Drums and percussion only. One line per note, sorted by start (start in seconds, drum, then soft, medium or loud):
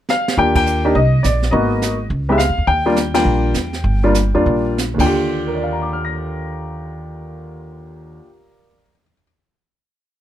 0.09 snare medium
0.28 snare medium
0.37 brush sweep soft
0.37 kick soft
0.55 kick medium
0.55 ride medium
0.66 hi-hat pedal soft
0.95 brush sweep soft
0.95 kick soft
1.24 snare medium
1.24 hi-hat pedal soft
1.42 snare soft
1.53 brush sweep soft
1.53 kick soft
1.82 snare medium
1.82 hi-hat pedal medium
2.10 brush sweep soft
2.10 kick soft
2.39 snare medium
2.39 hi-hat pedal soft
2.67 brush sweep soft
2.67 kick soft
2.96 snare medium
2.96 hi-hat pedal medium
3.14 snare medium
3.14 ride medium
3.25 brush sweep soft
3.54 snare medium
3.54 hi-hat pedal soft
3.73 snare soft
3.84 brush sweep soft
3.84 kick soft
4.15 snare medium
4.15 hi-hat pedal medium
4.46 brush sweep soft
4.46 kick soft
4.78 snare medium
4.78 hi-hat pedal medium
4.99 kick medium
4.99 crash medium